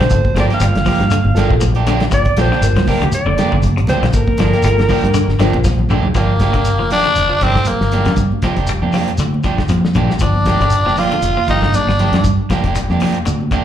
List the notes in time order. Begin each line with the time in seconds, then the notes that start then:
Already playing: C5
0.00 D3, snare, closed hi-hat
0.10 G1 A#3 F4 A4, kick, closed hi-hat, shekere
0.25 kick, high conga
0.34 G1 F3 A#3 D4 F4 G4 A4, snare, closed hi-hat, high conga, shekere
0.40 D5
0.50 A#3 D4 G4, snare, closed hi-hat
0.54 F5
0.60 G1 G3 A#3 F4 C5, snare, closed hi-hat, shekere
0.75 G1, snare, closed hi-hat
0.85 F3 A#3 G4, muted clean electric guitar stroke, kick, open hi-hat, high conga, low conga, shekere
1.00 G2, snare, closed hi-hat
1.10 D3, closed hi-hat, shekere
1.24 G1, high conga
1.35 G1 F3 A#3 D4 F4 G4 A4, snare, closed hi-hat, shekere
1.51 A#1, kick
1.61 F3, kick, closed hi-hat, high conga, low conga, shekere
1.75 A#3 D4 G4, closed hi-hat
1.87 D3 F3 A#3 D4 G4, snare, closed hi-hat, high conga, low conga, shekere
2.00 snare, closed hi-hat
2.11 G1 A#3 F4 A#4 D5, muted clean electric guitar stroke, kick, closed hi-hat, shekere
2.25 kick, closed hi-hat
2.37 A#1 F3 A#3 D4 F4 G4 A4, snare, closed hi-hat, high conga, shekere
2.41 C5
2.52 D3 A#3 D4 G4, snare
2.61 G1 A#3 F4 A#4, snare, closed hi-hat, shekere
2.76 C2 F3, snare, closed hi-hat, high conga
2.87 F3 A#3 D4 G4 A#4, kick, open hi-hat, high conga, low conga, shekere
3.01 D2 D3 G4, closed hi-hat
3.12 D5, closed hi-hat, shekere
3.26 F1 D3, high conga
3.37 F3 A#3 D4 F4 G4 A4, snare, closed hi-hat, low conga, shekere
3.52 G1 D3, kick
3.62 kick, closed hi-hat, high conga, low conga, shekere
3.77 C3, closed hi-hat
3.87 D2 F3 A#3 D4 G4 C5, snare, closed hi-hat, high conga, low conga, shekere
4.03 A#1 D3, snare, closed hi-hat
4.13 G1 A#3 F4 A4 A#4, kick, closed hi-hat, shekere
4.27 kick, high conga
4.38 G1 F3 A#3 D4 F4 A4, snare, closed hi-hat, high conga, shekere
4.53 A#3 D4 G4, snare, closed hi-hat
4.63 G1 G3 A#3 F4 A4, snare, closed hi-hat, shekere
4.78 G1, snare, closed hi-hat, high conga
4.89 F3 A#3 D4 G4, kick, open hi-hat, high conga, low conga, shekere
5.04 G2, closed hi-hat
5.14 D3, closed hi-hat, shekere
5.28 G1, snare
5.39 G1 D3 F3 A#3 D4 F4 G4 C5, snare, closed hi-hat, low conga, shekere
5.53 A#1, kick, high conga
5.64 F3, kick, snare, high conga, shekere
5.79 high tom, low conga
5.89 D3 F3 A#3 D4 G4, mid tom, low conga, shekere
6.03 floor tom, low conga
6.14 G1 F3 A#3 D4 G4, kick, snare, closed hi-hat, shekere
6.39 F3 A#3 D4 G4, kick, snare, closed hi-hat, high conga, shekere
6.53 G1 D3 A#3 D4 G4, kick, snare, closed hi-hat
6.65 closed hi-hat, shekere
6.79 F1 F3, high conga
6.90 F3 A#3 D4 G4, snare, open hi-hat, high conga, low conga, shekere
7.04 D3, closed hi-hat
7.15 F1, snare, closed hi-hat, shekere
7.29 F3
7.41 G1 F3 A#3 C4 D4 G4, kick, closed hi-hat, low conga, shekere
7.55 D3, kick, snare
7.65 A#3, closed hi-hat, high conga, low conga, shekere
7.81 G1, snare
7.91 F3 A#3 D4 G4, closed hi-hat, high conga, low conga, shekere
8.05 G2 D3, snare, closed hi-hat
8.16 G2, kick, closed hi-hat, shekere
8.32 high conga
8.42 F3 A#3 D4 G4, muted fingered electric bass stroke, kick, snare, closed hi-hat, high conga, shekere
8.56 F1 A#3 D4 G4, kick, closed hi-hat
8.67 G3, closed hi-hat, shekere
8.82 F2 A#3 D4 G4, high conga
8.92 F3 A#3 D4 G4, open hi-hat, high conga, low conga, shekere
9.08 closed hi-hat
9.18 D2 D3, snare, closed hi-hat, shekere
9.34 high conga
9.43 D3 F3 D4 G4, kick, snare, closed hi-hat, shekere
9.58 kick, snare
9.68 F2 F3, snare, closed hi-hat, high conga, low conga, shekere
9.85 snare
9.94 A#1 D3 F3 A#3 D4 G4, kick, closed hi-hat, high conga, low conga, shekere
10.10 snare
10.19 G1 F3 D4, kick, closed hi-hat, shekere
10.35 high conga
10.45 F3 A#3 D4 G4, kick, snare, closed hi-hat, high conga, shekere
10.61 G1 D3 A#3 D4 G4, kick, closed hi-hat
10.70 closed hi-hat, shekere
10.85 F1 F3 A#3 D4 G4, snare, high conga
10.96 F3 A#3 D4 F4 G4, open hi-hat, high conga, low conga, shekere
11.12 D3, snare, closed hi-hat
11.22 F1, snare, closed hi-hat, shekere
11.37 F3, high conga
11.48 G1 F3 A#3 D#4 G4, muted clean electric guitar stroke, kick, closed hi-hat, low conga, shekere
11.62 D3, kick, snare
11.74 D4, closed hi-hat, high conga, low conga, shekere
11.87 G1 C3, snare
11.99 F3 A#3 D4 G4, closed hi-hat, high conga, low conga, shekere
12.12 G2 D3, snare, closed hi-hat
12.24 G2, kick, closed hi-hat, shekere
12.50 F3 A#3 D4 G4, muted fingered electric bass stroke, kick, snare, closed hi-hat, high conga, shekere
12.64 F1 A#3 D4 G4, kick, snare, closed hi-hat
12.75 G3, snare, closed hi-hat, shekere
12.90 F2 A#3 D4 G4, snare, high conga
13.00 F3 A#3 D4 G4, open hi-hat, high conga, low conga, shekere
13.14 closed hi-hat
13.25 D2 D3, closed hi-hat, shekere
13.41 high conga
13.51 D3 F3 A#3 D4 G4, kick, closed hi-hat, shekere